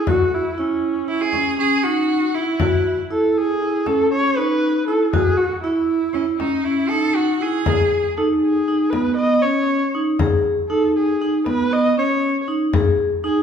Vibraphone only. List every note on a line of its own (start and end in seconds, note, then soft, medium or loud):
0.08 0.43 F#4 medium
0.58 0.93 E4 medium
1.08 1.26 E4 medium
1.34 1.51 C#4 medium
1.59 1.77 C#4 medium
1.85 2.20 D#4 medium
2.35 2.53 E4 medium
2.61 2.96 F#4 medium
3.10 3.46 E4 medium
3.62 3.79 E4 medium
3.87 4.04 C#4 medium
4.12 4.29 C#4 medium
4.37 4.72 D#4 medium
4.88 5.05 E4 medium
5.14 5.49 F#4 medium
5.64 5.99 E4 medium
6.14 6.32 E4 medium
6.40 6.58 C#4 medium
6.65 6.83 C#4 medium
6.91 7.26 D#4 medium
7.41 7.58 E4 medium
7.66 8.01 G#4 medium
8.18 8.53 D#4 medium
8.68 8.86 D#4 medium
8.93 9.11 B3 medium
9.19 9.36 B3 medium
9.44 9.79 C#4 medium
9.95 10.12 D#4 medium
10.20 10.55 G#4 medium
10.70 11.05 D#4 medium
11.21 11.39 D#4 medium
11.46 11.64 B3 medium
11.71 11.89 B3 medium
11.97 12.32 C#4 medium
12.48 12.65 D#4 medium
12.73 13.08 G#4 medium
13.24 13.43 D#4 medium